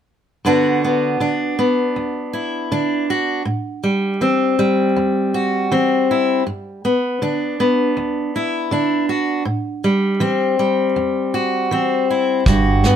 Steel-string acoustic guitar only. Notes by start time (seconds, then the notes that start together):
0.45 G2 D3 B3 D4 F#4
0.84 B3
1.20 D3 D4
1.59 B3
1.96 D2
2.33 E4
2.72 D3 D4
3.10 F#4
3.45 A2
3.83 G3
4.21 E3 C4
4.59 G3
4.96 E2
5.34 F#4
5.72 E3 C4
6.11 E4
6.47 G2
6.85 B3
7.22 D3 D4
7.60 B3
7.97 D2
8.36 E4
8.71 D3 D4
9.09 F#4
9.45 A2
9.84 G3
10.20 E3 C4
10.59 G3
10.96 E2
11.34 F#4
11.71 E3 C4
12.10 E4
12.47 G2 F#4
12.86 B3